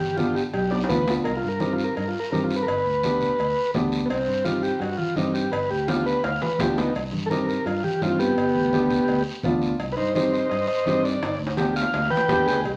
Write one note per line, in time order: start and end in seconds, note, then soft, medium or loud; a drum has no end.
0.00 0.39 G1 loud
0.00 0.16 G4 medium
0.17 0.37 B3 medium
0.17 0.37 D4 medium
0.17 0.36 F4 medium
0.17 0.38 G4 medium
0.17 high conga loud
0.17 short guiro medium
0.35 0.43 G4 medium
0.35 short guiro medium
0.54 0.82 B1 loud
0.54 0.70 G4 medium
0.54 cowbell medium
0.54 high conga soft
0.54 long guiro medium
0.71 0.78 B3 medium
0.71 0.78 D4 medium
0.71 0.78 G4 medium
0.71 0.79 D5 medium
0.71 high timbale medium
0.84 high timbale loud
0.89 1.18 D2 loud
0.89 0.96 B3 medium
0.89 0.96 D4 medium
0.89 0.96 F4 medium
0.89 1.14 B4 medium
0.89 high conga medium
0.89 low conga medium
0.89 short guiro medium
1.08 1.25 B3 medium
1.08 1.26 D4 medium
1.08 1.26 F4 medium
1.08 low timbale medium
1.08 short guiro medium
1.24 1.40 C2 loud
1.24 1.36 A#4 medium
1.24 cowbell loud
1.24 high conga soft
1.24 long guiro medium
1.37 1.49 F4 medium
1.44 1.86 G2 medium
1.48 1.60 A#4 medium
1.60 1.86 C4 medium
1.60 1.86 D#4 medium
1.60 1.86 G4 medium
1.60 1.72 A#4 medium
1.60 high conga loud
1.60 short guiro medium
1.73 1.84 F4 medium
1.78 short guiro medium
1.84 1.95 A#4 medium
1.96 2.11 G2 medium
1.96 2.08 A#4 medium
1.96 cowbell medium
1.96 high conga soft
1.96 long guiro medium
2.08 2.20 F4 medium
2.20 2.30 A#4 medium
2.31 2.61 G2 loud
2.31 2.57 C4 medium
2.31 2.57 D#4 medium
2.31 2.58 G4 medium
2.31 2.43 A#4 medium
2.31 high conga medium
2.31 short guiro medium
2.44 2.56 F4 medium
2.51 short guiro medium
2.56 2.66 B4 medium
2.63 2.65 A#4 medium
2.67 2.82 G1 loud
2.67 3.71 B4 medium
2.67 cowbell medium
2.67 long guiro medium
2.86 3.28 D2 medium
3.03 3.29 B3 medium
3.03 3.29 D4 medium
3.03 3.29 G4 medium
3.03 high conga loud
3.03 short guiro medium
3.21 low conga medium
3.21 short guiro medium
3.39 3.53 D2 medium
3.39 cowbell medium
3.39 high conga soft
3.39 long guiro medium
3.74 4.03 D2 loud
3.74 4.00 B3 medium
3.74 4.00 D4 medium
3.74 4.00 G4 medium
3.74 high conga medium
3.74 low conga medium
3.74 low timbale medium
3.74 short guiro medium
3.92 short guiro medium
4.06 4.08 B3 medium
4.10 4.24 C2 medium
4.10 4.45 C4 loud
4.10 cowbell medium
4.10 high conga soft
4.10 long guiro medium
4.27 4.70 G2 medium
4.45 4.71 C4 medium
4.45 4.71 D#4 medium
4.45 4.63 F4 loud
4.45 4.71 G4 medium
4.45 high conga loud
4.45 short guiro medium
4.63 4.81 G4 medium
4.63 short guiro medium
4.80 4.95 G2 loud
4.80 4.98 F#4 medium
4.80 cowbell medium
4.80 high conga soft
4.80 long guiro medium
4.97 5.16 F4 medium
4.97 high conga medium
5.16 5.45 G2 loud
5.16 5.42 C4 medium
5.16 5.34 D#4 medium
5.16 5.42 D#4 medium
5.16 5.42 G4 medium
5.16 high conga medium
5.16 short guiro medium
5.34 5.52 G4 medium
5.34 short guiro medium
5.52 5.67 G1 loud
5.52 5.70 B4 medium
5.52 cowbell loud
5.52 high conga soft
5.52 long guiro medium
5.70 6.13 D2 medium
5.70 5.88 G4 medium
5.88 6.13 B3 medium
5.88 6.14 D4 medium
5.88 6.05 F4 loud
5.88 6.14 G4 medium
5.88 high conga loud
5.88 high timbale medium
5.88 short guiro medium
6.06 6.23 B4 medium
6.06 short guiro medium
6.24 6.38 D2 medium
6.24 6.41 F5 medium
6.24 cowbell medium
6.24 high conga soft
6.24 high timbale loud
6.24 long guiro medium
6.42 6.59 B4 medium
6.42 high conga medium
6.42 low timbale loud
6.59 6.88 D2 loud
6.59 6.85 B3 medium
6.59 6.85 D4 medium
6.59 6.85 F4 medium
6.59 6.77 G4 medium
6.59 high conga medium
6.59 low conga medium
6.59 low timbale loud
6.59 short guiro medium
6.77 6.94 B3 medium
6.77 6.95 D#4 medium
6.77 low timbale medium
6.77 short guiro medium
6.95 7.09 C2 loud
6.95 cowbell loud
6.95 high conga soft
6.95 long guiro medium
7.12 7.55 G2 medium
7.12 high conga medium
7.26 7.29 A4 medium
7.30 7.56 C4 medium
7.30 7.56 D#4 medium
7.30 7.56 G4 medium
7.30 7.46 A#4 loud
7.30 high conga loud
7.30 short guiro medium
7.47 7.65 A#4 medium
7.47 short guiro medium
7.66 7.80 G2 medium
7.66 7.83 F4 medium
7.66 cowbell medium
7.66 high conga soft
7.66 long guiro medium
7.84 8.01 G4 medium
7.84 high conga medium
8.01 8.30 G2 loud
8.01 8.27 C4 medium
8.01 8.27 D#4 medium
8.01 8.20 F4 medium
8.01 8.28 F4 medium
8.01 high conga medium
8.01 low timbale medium
8.01 short guiro medium
8.19 9.22 B3 medium
8.19 9.23 G4 loud
8.19 short guiro medium
8.37 8.52 G1 loud
8.37 cowbell loud
8.37 long guiro medium
8.55 8.98 D2 medium
8.55 high conga medium
8.73 8.98 B3 medium
8.73 8.99 D4 medium
8.73 8.99 G4 loud
8.73 high conga medium
8.73 short guiro medium
8.90 low conga medium
8.90 short guiro medium
9.08 9.23 D2 medium
9.08 cowbell medium
9.08 high conga soft
9.08 long guiro medium
9.43 9.73 D2 loud
9.43 9.69 B3 medium
9.43 9.70 D4 medium
9.43 9.70 F4 loud
9.43 high conga medium
9.43 low conga medium
9.43 short guiro medium
9.62 short guiro medium
9.79 9.94 C2 loud
9.79 cowbell loud
9.79 high conga soft
9.79 long guiro medium
9.92 9.95 B4 medium
9.97 10.40 G2 medium
9.97 10.14 D#4 medium
9.97 10.14 C5 medium
10.15 10.41 C4 medium
10.15 10.32 D#4 medium
10.15 10.41 D#4 medium
10.15 10.41 G4 medium
10.15 10.33 C5 medium
10.15 high conga loud
10.15 short guiro medium
10.33 10.50 D#4 medium
10.33 10.48 C5 medium
10.33 short guiro medium
10.49 10.65 G2 medium
10.49 10.66 C5 medium
10.49 10.67 D#5 medium
10.49 cowbell medium
10.49 high conga soft
10.49 long guiro medium
10.68 10.85 C5 medium
10.68 10.86 D#5 medium
10.86 11.15 G2 loud
10.86 11.12 C4 medium
10.86 11.12 D#4 medium
10.86 11.12 G4 medium
10.86 11.03 C5 medium
10.86 11.04 D#5 medium
10.86 high conga medium
10.86 low timbale medium
10.86 short guiro medium
11.04 11.39 D5 loud
11.04 short guiro medium
11.22 11.37 G1 medium
11.22 cowbell loud
11.22 high conga soft
11.22 high timbale medium
11.22 long guiro medium
11.39 11.82 D2 medium
11.47 high timbale loud
11.57 11.83 B3 medium
11.57 11.83 D4 medium
11.57 11.75 G4 loud
11.57 11.84 G4 medium
11.57 high conga loud
11.57 low timbale medium
11.57 short guiro medium
11.76 12.10 F5 loud
11.76 short guiro medium
11.82 low timbale medium
11.93 12.08 D2 loud
11.93 cowbell medium
11.93 high conga soft
11.93 low timbale loud
11.93 long guiro medium
12.05 low timbale medium
12.10 12.60 B4 medium
12.10 12.63 G5 medium
12.10 high conga medium
12.17 low timbale medium
12.28 12.45 F2 medium
12.28 12.54 B3 medium
12.28 12.54 D4 medium
12.28 12.47 G4 loud
12.28 12.54 G4 medium
12.28 high conga medium
12.28 low conga medium
12.28 low timbale loud
12.28 short guiro medium
12.46 12.63 D2 medium
12.46 12.65 G#4 medium
12.46 short guiro medium
12.53 low timbale loud
12.64 12.77 C2 medium
12.64 12.72 G4 medium
12.64 cowbell medium
12.64 low conga medium
12.64 long guiro medium